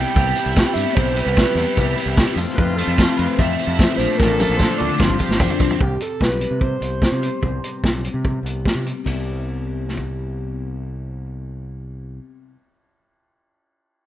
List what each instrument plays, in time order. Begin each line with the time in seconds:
Already playing: clean electric guitar C3 B3 E4, overdriven electric guitar C3 E3 G3 B3, trumpet E4, transistor combo organ G4 E5 G5 B5, analog synth lead G5
0.00 clean electric guitar G3
0.16 fingered electric bass C2, clean electric guitar C3 G3 B3 E4, kick, tambourine
0.36 clean electric guitar G3 B3 E4, open hi-hat, tambourine
0.46 fingered electric bass C2
0.55 clean electric guitar C3 G3 B3 E4, kick, snare, tambourine
0.73 fingered electric bass G2, overdriven electric guitar G3, analog synth lead E5, open hi-hat, tambourine
0.88 snare
0.95 fingered electric bass B1, clean electric guitar C3 G3 B3 E4, analog synth lead C5, kick
1.13 overdriven electric guitar G3, analog synth lead B4, open hi-hat, tambourine
1.26 fingered electric bass C2
1.36 clean electric guitar C3 G3 B3 E4, kick, snare, tambourine
1.55 fingered electric bass E2, overdriven electric guitar E3, clean electric guitar G3 B3 E4, open hi-hat
1.77 fingered electric bass C2, clean electric guitar C3 G3 B3 E4, kick, tambourine
1.96 clean electric guitar G3 B3 E4, open hi-hat, tambourine
2.06 fingered electric bass C2
2.17 clean electric guitar C3 G3 B3 E4, kick, snare, tambourine
2.36 fingered electric bass F2, clean electric guitar C3 E3 A3 C4, transistor combo organ C4 A5, trumpet F4, open hi-hat, tambourine
2.40 clean electric guitar F2
2.49 snare
2.55 clean electric guitar F2 C3 E3, fingered electric bass F2, analog synth lead B4, kick
2.60 clean electric guitar A3 C4
2.76 overdriven electric guitar A3, analog synth lead A4, open hi-hat, tambourine
2.87 fingered electric bass F2
2.98 clean electric guitar C3 E3 A3 C4, kick, snare, tambourine
3.17 fingered electric bass F2, clean electric guitar A3 C4, analog synth lead B4, open hi-hat
3.22 clean electric guitar E3
3.38 fingered electric bass F2, clean electric guitar C3 E3 A3 C4, analog synth lead E5, kick, tambourine
3.57 clean electric guitar C4, overdriven electric guitar E4, analog synth lead E5, open hi-hat, tambourine
3.61 clean electric guitar E3 A3
3.67 fingered electric bass F2
3.78 clean electric guitar F2 C3 E3 A3 C4, kick, snare, tambourine
3.97 fingered electric bass A#1, clean electric guitar A#2 F3 A3 D4, trumpet A4, analog synth lead C5, transistor combo organ D5 F5, open hi-hat, tambourine
4.11 snare
4.17 fingered electric bass A1, clean electric guitar A#2 F3 A3 D4, analog synth lead A#4, kick, snare, tambourine
4.39 overdriven electric guitar A3, analog synth lead A#4, high tom, tambourine
4.50 fingered electric bass A#1
4.56 clean electric guitar A#2 F3, analog synth lead C5, kick, tambourine
4.60 clean electric guitar A3 D4, snare
4.78 fingered electric bass D2, overdriven electric guitar D3, clean electric guitar F3 A3 D4, analog synth lead D5, mid tom, tambourine
4.97 fingered electric bass G1, clean electric guitar G2 D3 F3 C4 D4, trumpet F4, analog synth lead C5, transistor combo organ G5 C6, kick, snare, tambourine
5.10 kick
5.18 clean electric guitar F3 C4 D4, overdriven electric guitar G4, kick, tambourine
5.29 fingered electric bass G1, snare
5.38 clean electric guitar G2 D3 F3 C4 D4, kick, floor tom, tambourine
5.50 floor tom
5.60 fingered electric bass B1, overdriven electric guitar C4, kick, tambourine
5.70 floor tom
5.80 fingered electric bass C2, clean electric guitar C3, analog synth lead G4, kick
6.00 clean electric guitar C3, analog synth lead A4, closed hi-hat
6.20 fingered electric bass B1, clean electric guitar G3, analog synth lead B4, kick, snare
6.39 clean electric guitar C3, closed hi-hat
6.51 fingered electric bass C3
6.59 clean electric guitar G3, analog synth lead C5, kick
6.80 fingered electric bass C2, clean electric guitar B3, closed hi-hat
7.01 clean electric guitar C3, kick, snare
7.12 fingered electric bass C3
7.22 clean electric guitar G3, closed hi-hat
7.42 fingered electric bass C2, clean electric guitar C3, kick
7.64 clean electric guitar C3, closed hi-hat
7.84 fingered electric bass B1, clean electric guitar G3, kick, snare
8.04 clean electric guitar C3, closed hi-hat
8.14 fingered electric bass C3
8.24 clean electric guitar G3, kick
8.43 fingered electric bass C2, clean electric guitar B3, closed hi-hat
8.65 clean electric guitar C3, kick, snare
8.75 fingered electric bass C3
8.86 clean electric guitar G3, closed hi-hat
9.04 fingered electric bass C2, clean electric guitar C3 G3 B3 E4, kick, ride
9.88 snare
9.97 kick